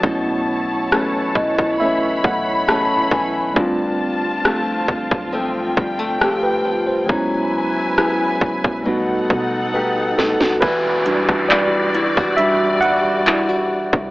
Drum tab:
HH |----------------|----------------|----------------|x-x-x-x-x-x-x---|
CP |----------------|----------------|----------------|----x-------x---|
SD |----r-------r---|----r-------r---|----r---------oo|---r------------|
BD |o-----oo--o---o-|o-----oo--o-----|o-----oo--o-----|o--o---o-------o|